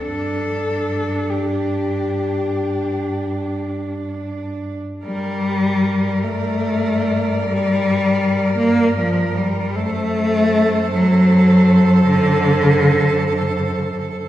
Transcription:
<<
  \new Staff \with { instrumentName = "Cello" } { \time 12/8 \key g \minor \tempo 4. = 51 a'4. g'2. r4. | d''1. | c''1. | }
  \new Staff \with { instrumentName = "Cello" } { \time 12/8 \key g \minor d'1~ d'4.~ d'16 r16 | bes'1. | a'1. | }
  \new Staff \with { instrumentName = "Cello" } { \clef bass \time 12/8 \key g \minor d'1~ d'4~ d'16 r8. | g4. a4. g4. bes8 f8 g8 | a4. fis4. d2~ d8 r8 | }
  \new Staff \with { instrumentName = "Cello" } { \clef bass \time 12/8 \key g \minor g,1~ g,4.~ g,16 r16 | g,1. | fis,1. | }
>>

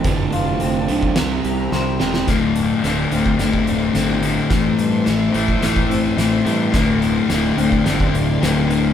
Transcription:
<<
  \new Staff \with { instrumentName = "String section" } { \time 4/4 \key d \minor \tempo 4 = 108 << { <f a''>2 <g' bes''>2 | <a' c'''>1~ | <a' c'''>1~ | <a' c'''>1 | } \\ { <c'' d''>2 <c'' e''>2 | <d'' f''>1 | <c'' e''>1 | <d'' f''>1 | } >> }
  \new Staff \with { instrumentName = "Clean electric guitar" } { \time 4/4 \key d \minor d,8 f'8 c'8 d8 c8 g'8 c''8 g'8 | d,4 d8 c'8 d8 a8 c'8 d8 | a,4 a8 e'8 a8 c'8 e'8 a8 | d,4 d8 c'8 d8 a8 c'8 d8 | }
  \new Staff \with { instrumentName = "Overdriven electric guitar" } { \clef bass \time 4/4 \key d \minor <d, a, d>4. <d, a, d>8 <c g c'>4. <c g c'>8 | r1 | r1 | r1 | }
  \new Staff \with { instrumentName = "Distorted electric guitar" } { \clef bass \time 4/4 \key d \minor r1 | <d, a, d>4 <d, a, d>8 <d, a, d>8 <d, a, d>4 <d, a, d>8 <d, a, d>8 | <a, e a>4 <a, e a>8 <a, e a>8 <a, e a>4 <a, e a>8 <a, e a>8 | <d, a, d>4 <d, a, d>8 <d, a, d>8 <d, a, d>4 <d, a, d>8 <d, a, d>8 | }
  \new Staff \with { instrumentName = "Fingered electric bass" } { \clef bass \time 4/4 \key d \minor f,,8 f,,8 f,,8 b,,8 c,8 c,8 c,8 e,,8 | d,,4 d,,8 d,,8 g,,8 d,,8 g,,4 | a,,8 g,8 a,,8 a,,8 a,,8 a,,8 a,,8 g,8 | d,,4 d,,8 d,,8 g,,8 d,,8 d,,4 | }
  \new DrumStaff \with { instrumentName = "Drums" } \drummode { \time 4/4 <hh bd>8 hh8 hh8 hh16 bd16 <hh sn>8 hh8 sn8 sn16 sn16 | <hh bd sn>8 hh8 <hh sn>8 hh16 bd16 <hh sn>16 bd16 hh8 <hh sn>8 hh8 | <hh bd sn>8 hh8 <hh sn>8 hh16 bd16 <hh sn>16 bd16 hh8 <hh sn>8 hh8 | <hh bd sn>8 hh8 <hh sn>8 hh16 bd16 <hh sn>16 bd16 hh8 <hh sn>8 hh8 | }
>>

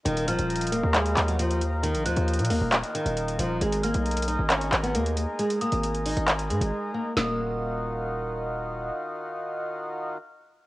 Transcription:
<<
  \new Staff \with { instrumentName = "Synth bell" } { \time 4/4 \key ees \minor \tempo 4 = 135 r8 f'''2.~ f'''8 | r8 ges'''2.~ ges'''8 | r8 f'''2.~ f'''8 | r8 ees'''4. r2 |
ees'''2. r4 | r1 | }
  \new Staff \with { instrumentName = "Accordion" } { \time 4/4 \key ees \minor << { <ees f' bes'>1~ | <ees f' bes'>1 | <aes aes' bes'>1~ | <aes aes' bes'>1 |
<ees ees' f' ges'>1~ | <ees ees' f' ges'>1 | } \\ { ees'1~ | ees'1~ | ees'1~ | ees'1 |
r1 | r1 | } >> }
  \new Staff \with { instrumentName = "Nylon-string guitar" } { \clef bass \time 4/4 \key ees \minor ees8 f4 bes8 aes8. ges16 f8 r8 | ees8 f4 bes8 r8 ees4 f8 | aes8 bes4 ees'8 des'8. ces'16 bes8 r8 | aes8 bes4 ees'8 r8 aes4 bes8 |
bes2. r4 | r1 | }
  \new Staff \with { instrumentName = "808-style bass" } { \clef bass \time 4/4 \key ees \minor ees,,8. ees,,4 ees,8. ees,4.~ | ees,16 bes,,16 ees,16 ees,8 bes,16 ees,16 ees,,8 r8 ees,,8. ees,,8 | aes,,8. ces,4 aes,,8. aes,,8 ees,8. r16 | r8. aes,,4 aes,,8. aes,16 aes,,16 r4 |
ees,,1 | r1 | }
  \new DrumStaff \with { instrumentName = "Drums" } \drummode { \time 4/4 hh16 hh16 hh16 hh16 hh32 hh32 hh32 hh32 hh8 <hc hh>16 hh16 <hc hh>16 hh16 hh16 hh16 hh8 | hh16 hh16 hh16 hh16 hh32 hh32 hh32 hh32 hho8 <hc hh>16 hh16 hh16 hh16 hh16 hh16 hh8 | hh16 hh16 hh16 hh16 hh32 hh32 hh32 hh32 hh8 <hc hh>16 hh16 <hc hh>16 hh16 hh16 hh16 hh8 | hh16 hh16 hh16 hh16 hh16 hh16 <hh hho>16 hh16 <hc hh>16 hh16 hh16 hh16 r4 |
sn4 r4 r4 r4 | r4 r4 r4 r4 | }
>>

